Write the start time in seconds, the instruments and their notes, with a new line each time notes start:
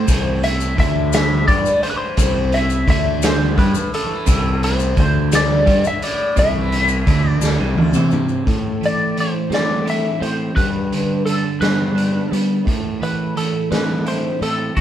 Already playing: tanpura A2 E3 A3, lead electric guitar C5
0.07 fingered electric bass C2, clean electric guitar C3, kick, closed hi-hat, maracas
0.33 tanpura A3
0.43 lead electric guitar E5, closed hi-hat
0.60 maracas
0.76 fingered electric bass D2, clean electric guitar D3, lead electric guitar E5, kick, closed hi-hat
0.93 tanpura A2
1.13 lead electric guitar E5, snare, closed hi-hat, maracas
1.48 fingered electric bass G2, clean electric guitar G3, lead electric guitar D5, kick, closed hi-hat
1.59 tanpura E3
1.66 maracas
1.83 lead electric guitar C5, closed hi-hat
1.90 lead electric guitar B4
1.97 lead electric guitar C5
2.17 fingered electric bass C2, clean electric guitar C3, tanpura A3, kick, closed hi-hat, maracas
2.52 lead electric guitar E5, closed hi-hat
2.70 maracas
2.83 tanpura A3
2.88 fingered electric bass D2, clean electric guitar D3, lead electric guitar E5, kick, closed hi-hat
3.22 lead electric guitar C5, snare, closed hi-hat, maracas
3.44 tanpura A2
3.57 fingered electric bass G2, clean electric guitar G3, lead electric guitar B4, kick, closed hi-hat
3.75 maracas
3.94 lead electric guitar A4, closed hi-hat
4.04 tanpura E3
4.26 fingered electric bass C2, clean electric guitar C3, kick, closed hi-hat, maracas
4.63 lead electric guitar C5, closed hi-hat
4.68 tanpura A3
4.79 maracas
4.97 fingered electric bass D2, clean electric guitar D3, lead electric guitar C5, kick, closed hi-hat
5.30 tanpura A3, snare, closed hi-hat, maracas
5.35 lead electric guitar D5
5.66 fingered electric bass G2, clean electric guitar G3, kick, closed hi-hat
5.84 lead electric guitar E5, maracas
5.93 tanpura A2
6.02 lead electric guitar D5, closed hi-hat
6.36 fingered electric bass C2, clean electric guitar C3, lead electric guitar E5, kick, closed hi-hat, maracas
6.55 tanpura E3
6.72 closed hi-hat
6.88 maracas
7.06 fingered electric bass D2, clean electric guitar D3, kick, closed hi-hat, maracas
7.15 tanpura A3
7.30 lead electric guitar D5
7.40 fingered electric bass D2, clean electric guitar D3, snare, maracas
7.59 fingered electric bass C2, clean electric guitar C3
7.75 fingered electric bass D2, clean electric guitar D3, tanpura A3, high tom
7.93 fingered electric bass C3, clean electric guitar C4, mid tom, maracas
8.11 mid tom, maracas
8.29 maracas
8.46 clean electric guitar A2, fingered electric bass A2, kick, closed hi-hat
8.81 clean electric guitar E3, closed hi-hat
8.86 lead electric guitar D5
9.16 clean electric guitar E3, closed hi-hat
9.20 lead electric guitar C5
9.50 fingered electric bass A2, clean electric guitar C4, snare, closed hi-hat
9.54 lead electric guitar D5
9.85 clean electric guitar E4, closed hi-hat
9.90 lead electric guitar E5
10.20 fingered electric bass A2, clean electric guitar C4, lead electric guitar C5, closed hi-hat
10.55 clean electric guitar G2, fingered electric bass G2, lead electric guitar B4, kick, closed hi-hat
10.92 clean electric guitar D3, closed hi-hat
11.26 clean electric guitar D3, lead electric guitar A4, closed hi-hat
11.61 fingered electric bass G2, clean electric guitar B3, lead electric guitar B4, snare, closed hi-hat
11.96 clean electric guitar D4, closed hi-hat
12.32 fingered electric bass G3, clean electric guitar B3, closed hi-hat
12.65 clean electric guitar A2, fingered electric bass A2, kick, closed hi-hat
13.00 clean electric guitar E3, lead electric guitar B4, closed hi-hat
13.35 clean electric guitar E3, lead electric guitar A4, closed hi-hat
13.71 fingered electric bass A2, clean electric guitar C4, lead electric guitar B4, snare, closed hi-hat
14.06 clean electric guitar E4, lead electric guitar C5, closed hi-hat
14.41 fingered electric bass A2, clean electric guitar C4, lead electric guitar A4, closed hi-hat
14.76 fingered electric bass D2, clean electric guitar D3, lead electric guitar F#4, kick, closed hi-hat